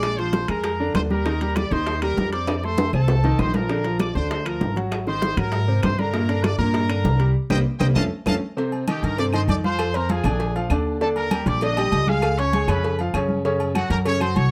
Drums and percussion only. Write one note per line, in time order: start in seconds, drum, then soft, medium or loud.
0.03 high bongo medium
0.03 high timbale medium
0.03 claves medium
0.18 high bongo soft
0.18 high conga soft
0.33 high bongo medium
0.33 high conga medium
0.33 high timbale medium
0.33 low timbale medium
0.48 high bongo soft
0.48 high conga soft
0.48 high timbale loud
0.48 claves medium
0.64 high bongo medium
0.64 high conga soft
0.64 high timbale medium
0.79 high conga soft
0.95 high bongo soft
0.95 low bongo medium
0.95 high conga medium
0.95 high timbale medium
0.95 low timbale medium
0.95 claves medium
1.10 high bongo soft
1.10 high conga medium
1.26 high bongo medium
1.41 high bongo soft
1.41 high conga soft
1.41 high timbale medium
1.56 high bongo medium
1.56 high conga loud
1.56 high timbale medium
1.56 low timbale medium
1.56 claves medium
1.72 high bongo soft
1.72 high conga soft
1.86 high bongo medium
1.86 high conga soft
1.86 high timbale medium
2.02 high conga soft
2.02 high timbale medium
2.02 claves medium
2.17 high bongo soft
2.17 low bongo medium
2.17 high conga medium
2.17 low timbale medium
2.33 high bongo soft
2.33 high timbale medium
2.47 high bongo medium
2.47 high conga soft
2.47 high timbale loud
2.47 claves medium
2.63 high bongo soft
2.63 high conga soft
2.78 high bongo medium
2.78 high conga medium
2.78 high timbale loud
2.93 high bongo soft
2.93 high conga soft
2.93 claves medium
3.08 high bongo medium
3.08 high conga soft
3.08 low timbale loud
3.24 high conga soft
3.24 low timbale medium
3.39 low bongo loud
3.39 high conga medium
3.39 low timbale medium
3.39 claves medium
3.54 low bongo medium
3.54 high conga medium
3.54 low timbale medium
3.69 high bongo medium
3.69 high conga soft
3.84 high bongo soft
3.84 high conga soft
3.84 high timbale medium
4.00 high bongo medium
4.00 high conga loud
4.00 high timbale medium
4.00 low timbale medium
4.00 claves medium
4.16 high bongo soft
4.31 high bongo medium
4.31 high conga soft
4.31 high timbale medium
4.46 high conga soft
4.46 high timbale loud
4.46 claves medium
4.61 high bongo soft
4.61 low bongo medium
4.61 high conga medium
4.61 low timbale medium
4.76 high bongo soft
4.76 high timbale medium
4.92 high bongo medium
4.92 high conga soft
4.92 high timbale medium
4.92 claves medium
5.07 high bongo soft
5.07 high conga soft
5.22 high bongo medium
5.22 high conga medium
5.22 high timbale medium
5.22 low timbale medium
5.37 high bongo soft
5.37 high timbale medium
5.37 claves medium
5.52 high bongo medium
5.52 high conga soft
5.52 high timbale medium
5.69 high conga soft
5.83 high bongo soft
5.83 low bongo medium
5.83 high conga medium
5.83 high timbale loud
5.83 low timbale medium
5.83 claves medium
5.99 high bongo soft
5.99 high conga medium
6.14 high bongo medium
6.28 high bongo soft
6.28 high conga soft
6.28 high timbale medium
6.44 high bongo medium
6.44 high conga loud
6.44 high timbale medium
6.44 low timbale medium
6.44 claves medium
6.59 high bongo soft
6.59 high conga soft
6.74 high bongo medium
6.74 high conga soft
6.74 high timbale medium
6.89 high conga soft
6.89 high timbale medium
6.89 claves medium
7.05 high bongo soft
7.05 low bongo medium
7.05 high conga medium
7.05 low timbale medium
7.20 high bongo soft
7.20 high timbale medium
7.50 low bongo loud
7.50 high conga loud
7.50 high timbale loud
7.50 claves medium
7.80 low bongo loud
7.80 high conga medium
7.80 high timbale loud
7.80 claves medium
7.96 low bongo medium
7.96 high conga loud
7.96 high timbale loud
7.96 claves loud
8.26 low bongo loud
8.26 high conga loud
8.26 high timbale loud
8.26 claves loud
8.57 cowbell loud
8.57 high conga soft
8.72 high conga soft
8.72 low agogo medium
8.88 cowbell medium
8.88 high conga loud
8.88 low agogo loud
8.88 claves medium
9.03 cowbell medium
9.03 high conga soft
9.18 cowbell loud
9.18 high conga soft
9.18 low agogo medium
9.33 high conga soft
9.33 low agogo loud
9.33 claves medium
9.49 cowbell medium
9.49 high conga medium
9.49 low agogo medium
9.64 high conga medium
9.79 cowbell loud
9.79 high conga soft
9.79 low agogo loud
9.79 claves medium
9.94 cowbell medium
9.94 high conga soft
10.09 cowbell medium
10.09 high conga loud
10.09 low agogo medium
10.24 cowbell medium
10.24 high conga soft
10.24 low conga medium
10.24 low agogo loud
10.24 claves medium
10.40 cowbell loud
10.40 high conga soft
10.56 high conga soft
10.56 low agogo medium
10.70 cowbell medium
10.70 high conga soft
10.70 low agogo loud
10.70 claves medium
11.01 cowbell loud
11.01 high conga soft
11.16 high conga soft
11.16 low agogo medium
11.31 cowbell medium
11.31 high conga loud
11.31 low agogo loud
11.31 claves medium
11.47 cowbell medium
11.47 high conga soft
11.61 cowbell loud
11.61 high conga soft
11.61 low agogo medium
11.77 high conga soft
11.77 low agogo loud
11.77 claves medium
11.92 cowbell medium
11.92 high conga medium
11.92 low agogo medium
12.07 high conga medium
12.22 cowbell loud
12.22 high conga soft
12.22 low agogo loud
12.22 claves medium
12.38 cowbell medium
12.38 high conga soft
12.53 cowbell medium
12.53 high conga loud
12.53 low agogo medium
12.68 cowbell medium
12.68 high conga soft
12.68 low conga medium
12.68 low agogo loud
12.68 claves medium
12.83 cowbell loud
12.83 high conga soft
12.99 high conga soft
12.99 low agogo medium
13.14 cowbell medium
13.14 high conga soft
13.14 low agogo loud
13.14 claves medium
13.29 high conga medium
13.45 cowbell medium
13.60 high conga soft
13.60 low agogo medium
13.75 cowbell medium
13.75 high conga loud
13.75 low agogo loud
13.75 claves medium
13.91 cowbell medium
13.91 high conga soft
14.05 cowbell loud
14.05 high conga soft
14.05 low agogo medium
14.20 high conga soft
14.20 low agogo loud
14.20 claves medium
14.36 cowbell medium
14.36 high conga medium
14.36 low agogo medium